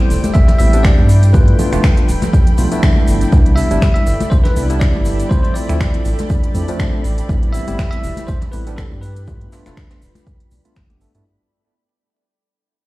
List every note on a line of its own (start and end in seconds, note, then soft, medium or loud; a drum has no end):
0.00 1.06 A3 medium
0.00 1.07 E4 medium
0.00 1.07 G4 medium
0.00 1.08 A4 medium
0.00 0.36 C5 loud
0.00 1.09 D5 medium
0.00 1.09 G5 medium
0.00 3.34 G5 medium
0.00 3.28 B5 loud
0.00 5.31 B5 medium
0.10 0.19 E1 medium
0.10 open hi-hat medium
0.10 shaker loud
0.10 shaker medium
0.24 snare soft
0.24 closed hi-hat medium
0.24 high conga loud
0.24 shaker medium
0.34 0.43 A1 medium
0.34 0.57 E5 loud
0.34 kick loud
0.34 shaker medium
0.34 shaker soft
0.48 snare medium
0.48 closed hi-hat medium
0.48 low conga medium
0.58 1.00 A1 medium
0.58 0.70 G3 medium
0.58 0.70 B3 medium
0.58 0.70 C4 medium
0.58 0.70 E4 medium
0.58 0.76 E5 loud
0.58 open hi-hat loud
0.58 high conga medium
0.58 shaker medium
0.73 1.08 G3 medium
0.73 1.08 B3 medium
0.73 1.08 C4 medium
0.73 1.08 D4 loud
0.73 0.84 E5 medium
0.73 closed hi-hat medium
0.73 shaker medium
0.83 1.35 D5 loud
0.83 finger snap loud
0.83 kick loud
0.83 snare loud
0.83 shaker medium
0.83 shaker soft
0.98 1.52 G2 medium
0.98 closed hi-hat soft
0.98 high conga loud
0.98 low conga medium
1.09 3.30 F3 medium
1.09 3.30 G3 medium
1.09 3.30 D4 medium
1.09 11.26 A4 medium
1.09 open hi-hat loud
1.09 shaker medium
1.23 11.26 G5 medium
1.23 closed hi-hat medium
1.23 closed hi-hat soft
1.23 shaker medium
1.33 1.56 A3 medium
1.33 1.56 B3 medium
1.33 1.56 D4 medium
1.33 1.56 F4 medium
1.33 2.29 B4 medium
1.33 kick loud
1.33 high conga loud
1.33 shaker medium
1.33 shaker soft
1.48 closed hi-hat soft
1.59 1.69 A3 medium
1.59 1.69 B3 medium
1.59 1.69 D4 medium
1.59 1.69 F4 medium
1.59 open hi-hat loud
1.59 low conga medium
1.59 shaker medium
1.67 11.26 D5 medium
1.72 1.79 F1 medium
1.72 1.83 A3 medium
1.72 1.83 B3 medium
1.72 1.83 D4 medium
1.72 1.83 F4 loud
1.72 finger snap soft
1.72 closed hi-hat medium
1.72 high conga medium
1.72 shaker medium
1.84 finger snap loud
1.84 kick loud
1.84 snare loud
1.84 shaker soft
1.84 shaker medium
1.97 2.08 A3 medium
1.97 2.08 B3 medium
1.97 2.08 D4 medium
1.97 2.08 F4 medium
1.97 closed hi-hat medium
2.08 2.17 D1 medium
2.08 open hi-hat loud
2.08 shaker medium
2.08 shaker loud
2.22 snare medium
2.22 closed hi-hat medium
2.22 high conga loud
2.22 shaker medium
2.33 kick loud
2.33 shaker soft
2.33 shaker medium
2.47 closed hi-hat medium
2.57 2.67 B1 loud
2.57 2.68 A3 medium
2.57 2.68 B3 medium
2.57 2.68 D4 medium
2.57 2.68 F4 medium
2.57 open hi-hat loud
2.57 high conga medium
2.57 shaker medium
2.57 shaker loud
2.72 3.30 A3 loud
2.72 3.30 B3 medium
2.72 3.30 D4 medium
2.72 3.30 E4 loud
2.72 closed hi-hat medium
2.72 shaker medium
2.83 finger snap loud
2.83 kick loud
2.83 snare loud
2.83 shaker medium
2.83 shaker soft
2.96 high conga medium
3.07 3.24 G1 medium
3.07 open hi-hat loud
3.07 shaker medium
3.21 closed hi-hat medium
3.21 shaker soft
3.32 3.63 C2 loud
3.32 3.55 G3 medium
3.32 3.55 B3 medium
3.32 3.55 D4 medium
3.32 7.01 D4 medium
3.32 3.55 E4 medium
3.32 5.29 E4 medium
3.32 5.29 B4 medium
3.32 7.01 D5 loud
3.32 11.27 B5 medium
3.32 kick loud
3.32 high conga medium
3.32 shaker soft
3.32 shaker medium
3.46 closed hi-hat soft
3.56 3.68 G3 medium
3.56 3.68 B3 medium
3.56 3.68 D4 medium
3.56 3.68 E4 medium
3.56 3.92 E5 loud
3.56 open hi-hat loud
3.56 shaker medium
3.70 3.78 G1 medium
3.70 3.82 G3 medium
3.70 3.82 B3 medium
3.70 3.82 D4 medium
3.70 3.82 E4 loud
3.70 closed hi-hat soft
3.70 closed hi-hat medium
3.70 high conga medium
3.70 shaker medium
3.82 finger snap loud
3.82 kick loud
3.82 snare loud
3.82 shaker soft
3.82 shaker medium
3.94 4.06 G3 medium
3.94 4.06 B3 medium
3.94 4.06 D4 medium
3.94 4.06 E4 medium
3.94 4.32 E5 loud
3.94 closed hi-hat medium
4.06 4.15 G1 medium
4.06 open hi-hat medium
4.06 shaker medium
4.06 shaker loud
4.20 snare soft
4.20 closed hi-hat medium
4.20 high conga loud
4.20 shaker medium
4.30 4.40 C2 medium
4.30 4.36 C5 loud
4.30 kick loud
4.30 shaker soft
4.30 shaker medium
4.44 4.82 B4 medium
4.44 snare medium
4.44 closed hi-hat medium
4.44 low conga medium
4.56 4.96 C2 medium
4.56 4.67 G3 medium
4.56 4.67 B3 medium
4.56 4.67 D4 medium
4.56 4.67 E4 medium
4.56 open hi-hat loud
4.56 high conga medium
4.56 shaker medium
4.70 5.28 G3 loud
4.70 5.28 B3 medium
4.70 5.28 D4 medium
4.70 5.28 E4 loud
4.70 closed hi-hat medium
4.70 shaker medium
4.80 5.32 D5 loud
4.80 finger snap loud
4.80 kick loud
4.80 snare loud
4.80 shaker soft
4.80 shaker loud
4.95 5.24 G1 medium
4.95 closed hi-hat soft
4.95 high conga medium
4.95 low conga medium
5.05 open hi-hat medium
5.05 shaker medium
5.20 closed hi-hat medium
5.20 shaker medium
5.29 5.53 F3 medium
5.29 8.99 A3 medium
5.29 5.53 A3 medium
5.29 5.53 C4 medium
5.29 5.53 E4 medium
5.29 7.03 F4 medium
5.29 5.42 C5 loud
5.29 kick loud
5.29 high conga medium
5.29 shaker medium
5.29 shaker soft
5.43 5.55 C5 medium
5.43 closed hi-hat soft
5.54 5.66 F3 medium
5.54 5.66 A3 medium
5.54 5.66 C4 medium
5.54 5.66 E4 medium
5.54 7.00 D5 medium
5.54 open hi-hat loud
5.54 shaker medium
5.69 5.76 D2 medium
5.69 5.80 F3 medium
5.69 5.80 A3 medium
5.69 5.80 C4 medium
5.69 5.80 E4 loud
5.69 7.04 C5 medium
5.69 finger snap soft
5.69 closed hi-hat medium
5.69 high conga medium
5.69 shaker medium
5.80 finger snap loud
5.80 kick loud
5.80 snare loud
5.80 shaker medium
5.80 shaker soft
5.94 6.05 F3 medium
5.94 6.05 A3 medium
5.94 6.05 C4 medium
5.94 6.05 E4 medium
5.94 closed hi-hat medium
6.05 6.14 A1 medium
6.05 open hi-hat medium
6.05 shaker medium
6.18 snare medium
6.18 closed hi-hat medium
6.18 high conga medium
6.18 shaker medium
6.29 kick loud
6.29 shaker soft
6.29 shaker medium
6.44 closed hi-hat medium
6.54 6.63 F2 loud
6.54 6.65 F3 medium
6.54 6.65 A3 medium
6.54 6.65 C4 medium
6.54 6.65 E4 medium
6.54 open hi-hat loud
6.54 high conga medium
6.54 shaker medium
6.68 7.03 F3 loud
6.68 7.03 A3 medium
6.68 7.03 C4 medium
6.68 7.03 D4 loud
6.68 closed hi-hat medium
6.68 shaker soft
6.79 finger snap loud
6.79 kick loud
6.79 snare loud
6.79 shaker soft
6.79 shaker loud
6.93 high conga medium
7.04 7.21 A1 medium
7.04 9.01 E4 medium
7.04 9.01 G4 medium
7.04 11.22 B4 loud
7.04 open hi-hat medium
7.04 shaker medium
7.18 closed hi-hat medium
7.18 shaker soft
7.29 7.59 A1 loud
7.29 7.51 G3 medium
7.29 7.51 B3 medium
7.29 7.51 C4 medium
7.29 7.51 E4 medium
7.29 kick loud
7.29 high conga loud
7.29 shaker soft
7.29 shaker medium
7.43 closed hi-hat soft
7.52 7.64 G3 medium
7.52 7.64 B3 medium
7.52 7.64 C4 medium
7.52 7.64 E4 medium
7.52 7.90 E5 loud
7.52 open hi-hat loud
7.52 shaker medium
7.67 7.75 G1 medium
7.67 7.78 G3 medium
7.67 7.78 B3 medium
7.67 7.78 C4 medium
7.67 7.78 E4 loud
7.67 closed hi-hat medium
7.67 closed hi-hat soft
7.67 high conga medium
7.67 shaker soft
7.79 finger snap loud
7.79 kick loud
7.79 snare loud
7.79 shaker soft
7.79 shaker medium
7.91 8.03 G3 medium
7.91 8.03 B3 medium
7.91 8.03 C4 medium
7.91 8.03 E4 medium
7.91 8.29 E5 loud
7.91 11.26 B5 medium
7.91 closed hi-hat medium
8.04 8.12 E1 medium
8.04 open hi-hat medium
8.04 shaker medium
8.17 snare soft
8.17 closed hi-hat medium
8.17 high conga medium
8.17 shaker soft
8.27 8.37 A1 medium
8.27 8.38 C5 loud
8.27 kick loud
8.27 shaker soft
8.27 shaker medium
8.41 snare soft
8.41 closed hi-hat medium
8.41 low conga medium
8.52 8.93 A1 medium
8.52 8.64 G3 medium
8.52 8.64 B3 medium
8.52 8.64 C4 medium
8.52 8.64 E4 medium
8.52 8.78 B4 loud
8.52 open hi-hat loud
8.52 high conga medium
8.52 shaker medium
8.67 9.01 G3 loud
8.67 9.01 B3 medium
8.67 9.01 C4 medium
8.67 9.01 D4 loud
8.67 closed hi-hat medium
8.67 shaker soft
8.76 8.88 A4 medium
8.76 finger snap loud
8.76 kick loud
8.76 snare loud
8.76 shaker loud
8.76 shaker soft
8.91 9.46 G2 loud
8.91 closed hi-hat soft
8.91 high conga medium
8.91 low conga medium
9.01 11.24 G3 medium
9.01 11.24 D4 medium
9.01 11.24 F4 medium
9.01 10.72 B4 medium
9.01 open hi-hat medium
9.01 shaker medium
9.16 closed hi-hat medium
9.16 shaker soft
9.27 9.50 A3 medium
9.27 9.50 B3 medium
9.27 9.50 D4 medium
9.27 9.50 F4 medium
9.27 kick loud
9.27 high conga loud
9.27 shaker soft
9.27 shaker medium
9.41 closed hi-hat soft
9.52 9.63 A3 medium
9.52 9.63 B3 medium
9.52 9.63 D4 medium
9.52 9.63 F4 medium
9.52 snare loud
9.52 open hi-hat loud
9.52 shaker medium
9.66 9.73 F1 medium
9.66 9.77 A3 medium
9.66 9.77 B3 medium
9.66 9.77 D4 medium
9.66 9.77 F4 loud
9.66 finger snap soft
9.66 snare loud
9.66 closed hi-hat medium
9.66 high conga medium
9.66 shaker medium
9.77 finger snap loud
9.77 kick loud
9.77 snare loud
9.77 shaker soft
9.77 shaker medium
9.91 10.01 A3 medium
9.91 10.01 B3 medium
9.91 10.01 D4 medium
9.91 10.01 F4 medium
9.91 snare loud
9.91 closed hi-hat medium
9.91 shaker medium
10.02 10.10 D1 medium
10.02 open hi-hat medium
10.02 shaker medium
10.15 snare medium
10.15 closed hi-hat medium
10.15 high conga medium
10.15 shaker medium
10.27 kick loud
10.27 shaker medium
10.27 shaker soft
10.40 closed hi-hat medium
10.51 10.60 B1 loud
10.51 open hi-hat loud
10.51 high conga medium
10.51 shaker medium
10.65 10.83 A3 medium
10.65 10.84 B3 medium
10.65 10.84 D4 medium
10.65 10.84 F4 medium
10.65 closed hi-hat medium
10.65 shaker medium
10.76 11.07 G1 loud
10.76 finger snap loud
10.76 kick loud
10.76 snare loud
10.76 shaker medium
10.90 10.99 A3 medium
10.90 10.99 B3 medium
10.90 10.99 D4 medium
10.90 10.99 G4 medium
10.90 closed hi-hat soft
10.90 high conga loud
11.01 11.11 A3 medium
11.01 11.11 B3 medium
11.01 11.11 D4 medium
11.01 11.11 A4 medium
11.01 open hi-hat medium
11.01 shaker medium
11.14 11.22 G2 medium
11.14 11.23 A3 medium
11.14 11.23 B3 medium
11.14 11.23 D4 medium
11.14 11.23 E4 medium
11.14 closed hi-hat medium
11.14 shaker soft